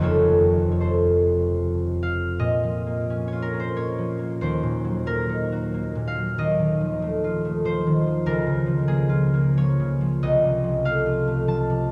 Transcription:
0.00 2.44 F1 medium
0.00 2.42 F2 medium
0.00 2.62 F3 medium
0.00 2.43 A3 soft
0.00 3.31 F4 medium
0.00 0.70 C#5 medium
0.05 0.80 A4 medium
0.71 0.86 C#5 medium
0.80 2.44 A4 medium
0.80 2.44 C5 medium
2.03 4.44 F5 medium
2.39 4.44 A#2 medium
2.39 3.84 D#5 medium
2.64 3.97 F3 soft
2.86 3.75 A#3 soft
3.10 3.53 C#4 medium
3.28 3.56 C#5 medium
3.32 4.45 F4 medium
3.42 3.71 A#4 medium
3.54 4.44 C#4 soft
3.60 3.88 C5 medium
3.76 4.18 A#3 soft
3.76 4.44 C#5 medium
3.98 4.45 F3 soft
4.19 5.05 A#3 soft
4.41 6.37 D#2 medium
4.41 5.54 C5 medium
4.63 5.94 A#2 soft
4.84 6.16 F#3 soft
5.06 5.73 A#3 soft
5.06 6.40 A#4 medium
5.29 8.28 D#4 medium
5.52 6.41 F#4 soft
5.74 6.41 A#3 soft
5.95 6.40 A#2 soft
6.07 6.60 F5 medium
6.17 6.40 F#3 soft
6.38 8.29 D#2 medium
6.38 8.29 D#5 medium
6.59 7.85 D#3 soft
6.81 7.64 F3 soft
7.02 7.44 A3 medium
7.24 9.08 F4 medium
7.45 8.29 A3 medium
7.65 8.05 F3 medium
7.65 8.29 C5 medium
7.87 8.29 D#3 soft
8.07 8.65 F3 soft
8.26 10.26 C#2 medium
8.26 10.26 A#4 medium
8.47 9.78 C#3 soft
8.66 9.56 F3 medium
8.87 9.32 A#3 medium
8.87 10.25 G#4 medium
9.09 11.05 F4 medium
9.34 10.24 A#3 medium
9.57 10.00 F3 medium
9.57 10.25 C#5 medium
9.80 10.25 C#3 medium
10.01 10.62 F3 soft
10.23 11.92 C2 medium
10.23 11.92 D#5 loud
10.44 11.68 C3 soft
10.64 11.47 F3 soft
10.85 11.26 A3 medium
10.85 11.92 F5 loud
11.06 11.92 F4 medium
11.27 11.92 A3 soft
11.47 11.91 F3 medium
11.47 11.92 A5 medium
11.70 11.92 C3 soft

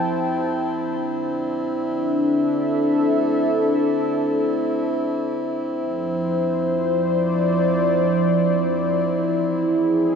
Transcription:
0.00 2.39 F3 medium
0.00 10.15 C4 medium
0.00 10.15 E4 medium
0.00 2.15 C5 medium
0.00 2.39 G5 medium
0.00 2.39 A5 medium
0.73 6.54 D4 medium
1.19 6.54 E5 medium
1.96 6.25 A4 medium
5.62 9.03 C5 medium
5.75 9.02 F3 medium
6.72 9.02 D5 medium
9.04 10.15 E4 medium
9.56 10.15 G#4 medium
9.70 10.15 E5 medium
9.89 10.15 D#5 medium

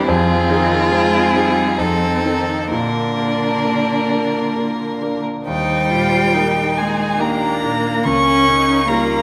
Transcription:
0.00 0.11 C4 medium
0.00 0.11 E4 medium
0.00 0.11 G4 medium
0.00 0.11 A#4 medium
0.07 0.49 F2 medium
0.07 0.51 F3 medium
0.07 0.89 C4 medium
0.07 1.80 F4 medium
0.07 1.80 G#4 medium
0.50 0.93 D#3 medium
0.50 0.88 C4 medium
0.50 0.88 D#4 medium
0.50 0.88 G#4 medium
0.91 1.35 G#3 medium
0.91 1.77 C4 medium
0.91 1.31 C4 medium
0.91 1.31 D#4 medium
0.91 1.31 G#4 medium
1.33 1.80 G3 medium
1.33 1.75 C4 soft
1.33 1.75 D#4 medium
1.33 1.75 G#4 soft
1.78 2.23 F2 medium
1.78 2.25 F3 medium
1.78 2.70 C4 medium
1.78 2.73 D#4 medium
1.78 2.69 A4 medium
2.24 2.69 D#3 medium
2.24 2.68 C4 soft
2.24 2.68 D#4 soft
2.24 2.68 A4 medium
2.69 3.17 A#2 medium
2.69 5.21 D3 medium
2.69 5.23 A#3 medium
2.69 5.26 D4 medium
2.69 5.22 A#4 medium
3.18 3.60 A#3 soft
3.18 3.60 D4 soft
3.18 3.61 A#4 soft
3.65 4.07 A#3 soft
3.65 4.07 D4 soft
3.65 4.07 A#4 medium
4.11 4.52 A#3 soft
4.11 4.52 D4 soft
4.11 4.53 A#4 soft
4.56 4.98 A#3 soft
4.56 4.98 D4 soft
4.56 4.98 A#4 soft
5.02 5.43 A#3 soft
5.02 5.43 D4 soft
5.02 5.44 A#4 medium
5.46 8.01 D#2 medium
5.46 6.79 G3 medium
5.46 5.92 D#4 medium
5.46 6.35 C5 medium
5.46 6.79 G5 medium
5.90 6.60 A#2 soft
5.90 6.35 F4 medium
6.33 6.73 A#3 soft
6.33 7.21 D#4 medium
6.33 6.73 D#4 soft
6.33 6.75 A#4 medium
6.33 6.74 A#4 soft
6.76 7.20 G#3 medium
6.76 7.18 A#3 soft
6.76 7.21 G#4 medium
6.76 7.21 G#5 medium
7.19 7.58 A#3 soft
7.19 8.07 A#3 medium
7.19 8.05 D4 medium
7.19 7.58 D#4 soft
7.19 7.62 G4 medium
7.19 7.58 A#4 soft
7.19 8.06 A#5 medium
7.62 8.05 A#2 soft
7.62 8.86 A#4 medium
8.04 9.22 C#2 medium
8.04 8.88 C#4 loud
8.04 8.50 C#4 medium
8.04 8.89 C#6 medium
8.48 9.14 C#3 soft
8.48 8.89 D#4 medium
8.87 9.22 G3 soft
8.87 9.22 A#3 loud
8.87 9.22 D#4 soft
8.87 9.22 F4 medium
8.87 9.22 A#4 medium
8.87 9.22 A#5 medium

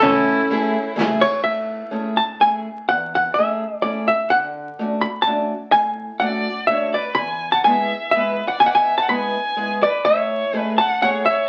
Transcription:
0.00 0.93 C#4 medium
0.00 0.92 E4 medium
0.00 0.90 A4 loud
0.00 kick loud
0.04 0.39 A2 medium
0.04 ride soft
0.50 0.75 A3 medium
0.50 0.75 C#4 medium
0.50 0.76 E4 medium
0.50 0.76 G#4 medium
0.50 ride soft
0.96 1.21 A3 medium
0.96 1.22 C#4 medium
0.96 1.22 E4 medium
0.96 1.22 G#4 medium
0.96 snare medium
0.96 ride medium
1.21 1.43 C#5 medium
1.21 ride soft
1.44 1.81 A2 soft
1.44 2.17 E5 medium
1.91 2.18 A3 medium
1.91 2.18 C#4 soft
1.91 2.18 E4 soft
1.91 2.18 G#4 medium
2.17 2.41 A5 medium
2.40 2.66 A3 soft
2.40 2.67 C#4 soft
2.40 2.66 E4 soft
2.40 2.67 G#4 soft
2.40 2.88 G#5 medium
2.89 3.26 E2 soft
2.89 3.14 F#5 medium
3.15 3.39 F#5 medium
3.34 3.63 A3 medium
3.34 3.82 E5 medium
3.38 3.63 C#4 soft
3.38 3.63 E4 soft
3.38 3.64 G#4 medium
3.82 4.09 A3 soft
3.82 4.09 C#4 soft
3.82 4.10 E4 soft
3.82 4.10 G#4 soft
3.82 4.07 D5 medium
4.08 4.32 E5 medium
4.30 4.68 D3 soft
4.30 5.01 F#5 medium
4.79 5.04 A3 medium
4.79 5.05 C#4 soft
4.79 5.05 D4 soft
4.79 5.05 F#4 medium
5.01 5.22 B5 medium
5.22 5.72 A5 medium
5.26 5.51 A3 medium
5.26 5.51 C#4 soft
5.26 5.51 D4 soft
5.26 5.52 F#4 medium
5.72 6.09 A2 soft
5.72 6.22 G#5 medium
6.20 6.46 A3 medium
6.20 6.46 C#4 soft
6.20 6.46 D4 medium
6.20 6.47 F#4 medium
6.20 6.67 D5 medium
6.20 6.67 F#5 medium
6.67 6.95 A3 soft
6.67 6.95 C#4 soft
6.67 6.95 D4 soft
6.67 6.95 F#4 soft
6.67 6.93 C#5 medium
6.67 6.95 E5 medium
6.94 7.17 B4 medium
6.94 7.18 D5 medium
7.15 7.54 E2 soft
7.15 7.52 G#5 medium
7.15 7.52 B5 medium
7.52 7.65 F#5 medium
7.52 7.64 A5 medium
7.64 7.91 G#3 medium
7.64 7.91 B3 soft
7.64 7.92 E4 soft
7.64 7.91 G#4 medium
7.64 8.12 E5 medium
7.64 8.10 G#5 medium
8.11 8.39 G#3 medium
8.11 8.39 B3 soft
8.11 8.39 E4 soft
8.11 8.40 G#4 medium
8.11 8.47 E5 medium
8.15 8.49 B4 medium
8.48 8.62 D5 medium
8.48 8.61 F#5 medium
8.60 8.98 B2 soft
8.60 8.69 E5 medium
8.60 8.69 G#5 medium
8.66 8.77 D5 medium
8.66 8.75 F#5 medium
8.75 8.98 E5 medium
8.75 8.97 G#5 medium
8.98 9.11 F#5 medium
8.98 9.09 A5 medium
9.08 9.34 G#3 medium
9.08 9.34 B3 medium
9.08 9.34 E4 soft
9.08 9.34 G#4 medium
9.08 9.84 B5 medium
9.15 9.81 G#5 medium
9.56 9.82 G#3 medium
9.56 9.83 B3 soft
9.56 9.82 E4 soft
9.56 9.83 G#4 medium
9.83 10.05 B4 medium
9.83 10.06 D5 medium
10.05 10.41 A2 medium
10.05 10.58 C#5 medium
10.05 10.60 E5 medium
10.53 10.78 A3 medium
10.53 10.78 C#4 medium
10.53 10.78 E4 medium
10.53 10.78 G#4 medium
10.58 10.75 B4 medium
10.58 10.79 D5 medium
10.78 10.99 F#5 medium
10.78 11.01 A5 medium
11.01 11.25 A3 medium
11.01 11.25 C#4 soft
11.01 11.25 E4 medium
11.01 11.25 G#4 medium
11.01 11.24 C#5 medium
11.01 11.25 F#5 medium
11.26 11.48 C#5 medium
11.26 11.48 E5 medium

